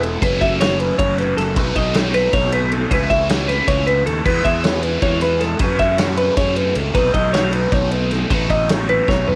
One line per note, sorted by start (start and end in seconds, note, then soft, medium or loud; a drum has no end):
0.00 0.16 E1 loud
0.00 0.21 E3 medium
0.00 0.21 G#3 medium
0.00 0.23 G#3 medium
0.00 0.22 B3 medium
0.00 0.22 E4 loud
0.00 0.22 A4 medium
0.00 ride medium
0.21 0.90 F#1 loud
0.21 1.55 F#2 medium
0.21 1.55 C#3 medium
0.21 1.56 F#3 loud
0.21 1.57 A3 medium
0.21 1.58 C#4 loud
0.21 0.41 B4 medium
0.21 kick loud
0.21 ride loud
0.41 0.60 E5 medium
0.41 kick medium
0.41 ride medium
0.61 0.80 C#5 medium
0.61 snare loud
0.61 ride loud
0.80 0.98 B4 medium
0.80 ride medium
0.98 1.33 F#1 loud
0.98 1.18 C#5 medium
0.98 kick loud
0.98 ride loud
1.18 1.37 B4 medium
1.18 snare soft
1.18 ride medium
1.37 1.55 F#1 loud
1.37 1.57 A4 medium
1.37 snare soft
1.37 ride medium
1.55 1.74 B1 medium
1.55 2.89 B2 medium
1.55 2.90 F#3 loud
1.55 2.91 A3 medium
1.55 2.91 D#4 loud
1.55 1.76 B4 loud
1.55 kick loud
1.55 ride loud
1.76 2.27 B1 loud
1.76 1.95 D#5 medium
1.76 kick medium
1.76 ride medium
1.94 2.14 C#5 loud
1.94 snare loud
1.94 ride loud
2.14 2.34 B4 medium
2.14 snare soft
2.14 ride medium
2.33 2.85 B1 loud
2.33 2.52 C#5 medium
2.33 kick loud
2.33 snare soft
2.33 ride loud
2.52 2.72 B4 medium
2.52 ride medium
2.72 2.91 A4 medium
2.72 ride medium
2.91 3.60 C#2 medium
2.91 4.24 C#3 loud
2.91 4.24 E3 loud
2.91 4.26 A3 medium
2.91 4.27 E4 loud
2.91 3.10 B4 loud
2.91 kick loud
2.91 ride loud
3.10 3.29 E5 medium
3.10 kick medium
3.10 snare soft
3.10 ride medium
3.29 3.49 C#5 medium
3.29 snare loud
3.29 ride loud
3.48 3.68 B4 medium
3.48 snare soft
3.48 ride medium
3.67 4.02 C#2 medium
3.67 3.87 C#5 medium
3.67 kick loud
3.67 ride loud
3.87 4.06 B4 medium
3.87 ride medium
4.06 4.24 D#2 medium
4.06 4.25 A4 medium
4.06 ride medium
4.24 4.43 E2 medium
4.24 5.59 E3 loud
4.24 5.59 G#3 loud
4.24 5.60 B3 medium
4.24 5.61 E4 medium
4.24 4.45 B4 loud
4.24 kick loud
4.24 crash loud
4.45 4.96 E2 loud
4.45 4.64 E5 medium
4.45 kick medium
4.45 ride medium
4.64 4.83 C#5 medium
4.64 snare loud
4.64 ride loud
4.83 5.02 B4 medium
4.83 ride medium
5.02 5.54 E2 loud
5.02 5.22 C#5 medium
5.02 kick loud
5.02 snare soft
5.02 ride loud
5.21 5.41 B4 medium
5.21 snare soft
5.21 ride medium
5.41 5.60 A4 medium
5.41 snare soft
5.41 ride medium
5.59 6.94 F#2 medium
5.59 6.29 F#2 medium
5.59 6.94 C#3 medium
5.59 6.95 F#3 loud
5.59 6.96 A3 loud
5.59 6.97 C#4 loud
5.59 5.80 B4 medium
5.59 kick loud
5.59 ride loud
5.79 5.98 E5 medium
5.79 kick medium
5.79 snare soft
5.79 ride medium
5.98 6.17 C#5 medium
5.98 snare loud
5.98 ride loud
6.17 6.37 B4 medium
6.17 ride medium
6.37 6.72 F#2 loud
6.37 6.57 C#5 medium
6.37 kick loud
6.37 snare soft
6.37 ride loud
6.56 6.76 B4 medium
6.56 ride medium
6.75 6.93 C#2 loud
6.75 6.95 A4 medium
6.75 ride medium
6.94 7.12 B1 loud
6.94 8.29 B2 medium
6.94 8.31 F#3 loud
6.94 8.30 A3 loud
6.94 8.33 D#4 loud
6.94 7.13 B4 loud
6.94 kick loud
6.94 ride loud
7.14 7.66 B1 loud
7.14 7.33 D#5 medium
7.14 kick medium
7.14 ride medium
7.33 7.53 C#5 medium
7.33 snare loud
7.33 ride loud
7.53 7.72 B4 medium
7.53 ride medium
7.72 8.24 B1 loud
7.72 7.91 C#5 medium
7.72 kick loud
7.72 snare soft
7.72 ride loud
7.91 8.11 B4 medium
7.91 ride medium
8.11 8.31 A4 medium
8.11 snare soft
8.11 ride medium
8.30 8.99 A1 loud
8.30 9.35 B2 medium
8.30 9.35 F#3 medium
8.30 9.35 A3 loud
8.30 9.35 D#4 loud
8.30 8.50 B4 medium
8.30 kick loud
8.30 ride loud
8.50 8.70 D#5 medium
8.50 kick medium
8.50 ride medium
8.69 8.89 C#5 loud
8.69 snare loud
8.69 ride loud
8.89 9.08 B4 medium
8.89 ride medium
9.08 9.35 B1 loud
9.08 9.28 C#5 medium
9.08 kick loud
9.08 snare medium
9.27 9.35 B4 medium
9.27 mid tom medium